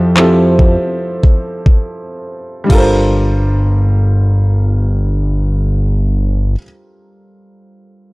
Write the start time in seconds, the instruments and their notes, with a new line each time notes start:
Already playing: analog synth bass F2, grand piano F3 C4 E4 G4 A4
0.15 grand piano F3 C4 E4 G4 A4, clap
0.59 kick
1.23 kick
1.66 kick
2.64 grand piano G3 D4
2.69 analog synth bass G1, grand piano F4 A4, kick, crash
2.75 grand piano A#4 C5